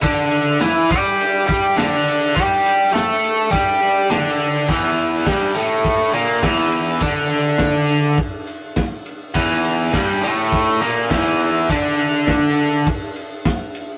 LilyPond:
<<
  \new Staff \with { instrumentName = "Overdriven electric guitar" } { \clef bass \time 4/4 \key e \minor \tempo 4 = 103 <d d'>4 <e e'>8 <g g'>4 <g g'>8 <d d'>4 | <g g'>4 <a a'>4 <g g'>4 <d d'>4 | <e, e>4 <g, g>8 <a, a>4 <ais, ais>8 <e, e>4 | <d d'>2 r2 |
<e, e>4 <g, g>8 <a, a>4 <ais, ais>8 <e, e>4 | <d d'>2 r2 | }
  \new DrumStaff \with { instrumentName = "Drums" } \drummode { \time 4/4 <bd cymr>8 cymr8 <cymr sn>8 <bd cymr>8 cymr8 <bd cymr>8 <cymr sn>8 cymr8 | <bd cymr>8 cymr8 <cymr sn>8 cymr8 <bd cymr>8 cymr8 <cymr sn>8 cymr8 | <cymc bd>8 cymr8 <bd cymr sn>8 cymr8 <bd cymr>8 cymr8 <bd cymr sn>8 cymr8 | <bd cymr>8 cymr8 <bd cymr sn>8 cymr8 <bd cymr>8 cymr8 <bd cymr sn>8 cymr8 |
<bd cymr>8 cymr8 <bd cymr sn>8 cymr8 <bd cymr>8 cymr8 <bd cymr sn>8 cymr8 | <bd cymr>8 cymr8 <bd cymr sn>8 cymr8 <bd cymr>8 cymr8 <bd cymr sn>8 cymr8 | }
>>